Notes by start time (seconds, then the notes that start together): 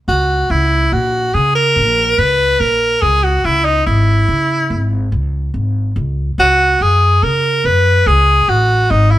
0.08 C#2 F#4
0.50 C#2 E4
0.92 A#1 F#4
1.34 C#3 G#4
1.55 A#4
1.76 A#1
2.18 C#2 B4
2.60 A#1 A#4
3.02 C#2 G#4
3.24 F#4
3.44 C#2 E4
3.65 D#4
3.86 G#1 E4
4.28 C#3
4.70 G#1
5.12 C#2
5.54 G#1
5.96 C#2
6.38 C#2 F#4
6.80 F#2 G#4
7.23 C#3 A#4
7.64 F#2 B4
8.06 C#2 G#4
8.48 A1 F#4
8.90 G#1 D#4
9.11 E4